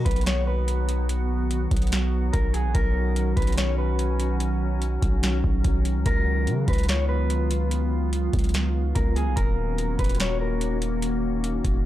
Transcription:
Already playing: D#3 F#3 B3 F#4
0.05 B1 B4, kick, closed hi-hat
0.11 closed hi-hat
0.16 closed hi-hat
0.21 closed hi-hat
0.26 C#5, snare, closed hi-hat
0.47 B4
0.68 closed hi-hat
0.89 closed hi-hat
1.09 closed hi-hat
1.51 closed hi-hat
1.71 B1, kick, closed hi-hat
1.77 closed hi-hat
1.82 closed hi-hat
1.87 closed hi-hat
1.92 snare, closed hi-hat
2.33 B1 A#4, kick, closed hi-hat
2.54 G#4, closed hi-hat
2.65 A#1
2.74 B1 C#4 A#4, kick, closed hi-hat
3.16 closed hi-hat
3.36 B1 B4, kick, closed hi-hat
3.42 closed hi-hat
3.47 closed hi-hat
3.52 closed hi-hat
3.57 C#5, snare, closed hi-hat
3.78 B4
3.99 closed hi-hat
4.20 closed hi-hat
4.40 closed hi-hat
4.82 closed hi-hat
5.02 B1, kick, closed hi-hat
5.23 snare, closed hi-hat
5.44 B1, kick
5.64 B1, kick, closed hi-hat
5.85 closed hi-hat
5.95 C#2
6.06 C#2 B3 F4 A#4, kick, closed hi-hat
6.47 C#3, closed hi-hat
6.68 C#2 B4, kick, closed hi-hat
6.73 closed hi-hat
6.78 closed hi-hat
6.83 closed hi-hat
6.89 C#5, snare, closed hi-hat
7.09 B4
7.30 closed hi-hat
7.51 closed hi-hat
7.71 closed hi-hat
8.13 closed hi-hat
8.33 C#2, kick, closed hi-hat
8.39 closed hi-hat
8.44 closed hi-hat
8.49 closed hi-hat
8.54 snare, closed hi-hat
8.95 C#2 A#4, kick, closed hi-hat
9.16 G#4, closed hi-hat
9.27 B1
9.36 D#1 D#3 A#3 C#4 F#4 A#4, kick, closed hi-hat
9.78 closed hi-hat
9.99 D#1 B4, kick, closed hi-hat
10.04 closed hi-hat
10.09 closed hi-hat
10.15 closed hi-hat
10.20 C#5, snare, closed hi-hat
10.41 A#4
10.61 closed hi-hat
10.82 closed hi-hat
11.02 closed hi-hat
11.44 closed hi-hat
11.65 D#1, kick, closed hi-hat

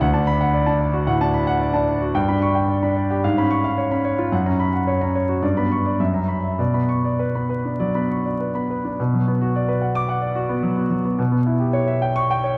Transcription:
0.01 D2 F#5
0.13 D4 A5
0.27 B5
0.41 F#5
0.53 D5
0.66 D4 A5
0.81 D5
0.93 F#4
1.07 A2 F#5
1.21 D4 A5
1.34 B5
1.47 F#5
1.60 D5
1.74 D4 A5
1.88 D5
2.01 F#4
2.15 G2 G5
2.28 D4 B5
2.42 C#6
2.55 G5
2.69 D5
2.83 D4 B5
2.96 D5
3.10 G4
3.24 G#2 F5
3.38 C#4 B5
3.51 C#6
3.64 F5
3.78 C#5
3.91 C#4 B5
4.05 C#5
4.18 F4
4.32 F#2 F#5
4.46 C#4 A#5
4.60 B5
4.74 F#5
4.87 C#5
5.01 C#4 A#5
5.15 C#5
5.29 F#4
5.42 G2 D5
5.57 B3 B5
5.72 C#6
5.86 D5
6.00 F#2 E5
6.14 C#4 A#5
6.28 B5
6.44 E5
6.59 B2 D5
6.74 B3 B5
6.89 C#6
7.04 D5
7.19 B4
7.35 B3 B5
7.49 B4
7.65 D4
7.80 F#3 D5
7.95 B3 B5
8.11 C#6
8.25 D5
8.40 B4
8.55 B3 B5
8.70 B4
8.85 D4
9.00 B2
9.14 F#3
9.28 B3
9.41 F#4
9.56 D5
9.69 B4
9.82 F#5
9.95 D6
10.09 F#5
10.21 D5
10.35 F#4
10.49 B3
10.63 F#3
10.77 B3
10.90 F#3
11.05 B3
11.19 B2
11.32 B3
11.46 E4
11.60 G4
11.73 C#5
11.87 E5
12.02 G5
12.16 C#6
12.31 G5
12.44 C#5

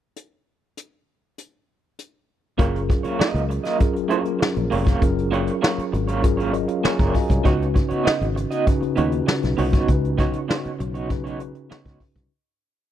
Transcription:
0.16 closed hi-hat
0.77 closed hi-hat
1.38 closed hi-hat
1.99 closed hi-hat
2.58 F#1 F#3 A#3 C#4 F4 G#4 A#4 C#5, kick, closed hi-hat
2.76 closed hi-hat
2.89 muted clean electric guitar stroke, kick, closed hi-hat
3.03 A#3 F4 A#4 C#5, muted fingered electric bass stroke, closed hi-hat
3.19 A#3 F4 A#4 D#5, muted fingered electric bass stroke, snare
3.34 C#2, closed hi-hat
3.49 muted clean electric guitar stroke, closed hi-hat
3.64 A#3 F4 A#4 D#5, snare, closed hi-hat
3.78 F#3 C#4 F4 G#4 A#4, muted clean electric guitar stroke, kick, closed hi-hat
3.94 muted clean electric guitar stroke, closed hi-hat
4.08 F#3 A#3 C#4 F4 G#4 A#4 C#5, closed hi-hat
4.24 muted clean electric guitar stroke, closed hi-hat
4.39 muted clean electric guitar stroke, snare
4.54 A#1, muted clean electric guitar stroke, closed hi-hat
4.70 F1 A#3 F4 A#4 C#5, open hi-hat
4.85 A#3 F4 A#4 C#5, kick, closed hi-hat
5.00 F#1 F#3 C#4 F4 G#4 A#4, kick, closed hi-hat
5.18 closed hi-hat
5.31 A#3 F4 A#4 C#5, closed hi-hat
5.47 closed hi-hat
5.61 A#3 F4 A#4 C#5, snare
5.78 muted fingered electric bass stroke, closed hi-hat
5.92 G#1, muted clean electric guitar stroke, closed hi-hat
6.08 A#3 F4 A#4 C#5, closed hi-hat
6.21 F#3 C#4 F4 G#4 A#4, muted clean electric guitar stroke, kick, closed hi-hat
6.37 A#3 F4 A#4 C#5, closed hi-hat
6.52 D#5, muted clean electric guitar stroke, closed hi-hat
6.68 F4 C#5 F5, muted clean electric guitar stroke, closed hi-hat
6.84 A#3 F4 G#4 A#4 C#5 F5 G#5, muted fingered electric bass stroke, snare
6.99 F#1 A#5, kick, closed hi-hat
7.14 F#4 D#5 G#5, muted clean electric guitar stroke, kick, open hi-hat
7.29 C2 F4 C#5, muted clean electric guitar stroke, kick, closed hi-hat
7.44 C#2 C#3 B3 C#4 D#4 F#4 B4 C#5, kick, closed hi-hat
7.62 closed hi-hat
7.74 muted clean electric guitar stroke, kick, closed hi-hat
7.89 B3 D#4 F#4 C#5, muted fingered electric bass stroke, closed hi-hat
8.04 B3 D#4 F#4 D#5, muted fingered electric bass stroke, snare
8.21 G#1, closed hi-hat
8.35 muted clean electric guitar stroke, closed hi-hat
8.51 B3 D#4 F#4 D#5, closed hi-hat
8.66 C#3 C#4 D#4 F#4 B4, muted clean electric guitar stroke, kick, closed hi-hat
8.81 muted clean electric guitar stroke, muted fingered electric bass stroke, closed hi-hat
8.96 D#2 C#3 B3 C#4 D#4 F#4 C#5, closed hi-hat
9.00 F4 B4
9.06 F#4
9.12 muted clean electric guitar stroke, closed hi-hat
9.27 muted clean electric guitar stroke, snare
9.42 B1, muted clean electric guitar stroke, snare, closed hi-hat
9.57 C2 B3 D#4 F#4 C#5, open hi-hat
9.73 B3 D#4 F#4 C#5, kick, closed hi-hat
9.87 C#2 C#3 C#4 D#4 F#4 B4, kick, closed hi-hat
10.05 closed hi-hat
10.18 B3 D#4 F#4 C#5, kick, closed hi-hat
10.33 closed hi-hat
10.48 B3 D#4 F#4 C#5, snare
10.65 muted fingered electric bass stroke, closed hi-hat
10.79 B1, muted clean electric guitar stroke, closed hi-hat
10.94 B3 D#4 F#4 C#5, closed hi-hat
11.08 C#3 C#4 D#4 F#4 B4, muted clean electric guitar stroke, kick, closed hi-hat
11.24 B3 D#4 F#4 C#5, closed hi-hat
11.38 C#3 C#4 D#4 F#4 B4, muted clean electric guitar stroke, closed hi-hat
11.55 muted clean electric guitar stroke, closed hi-hat
11.70 B3 D#4 F#4 C#5, muted fingered electric bass stroke, snare
11.85 C#2, kick, snare, closed hi-hat
12.00 muted clean electric guitar stroke, kick, open hi-hat
12.16 C2, muted clean electric guitar stroke, kick, closed hi-hat

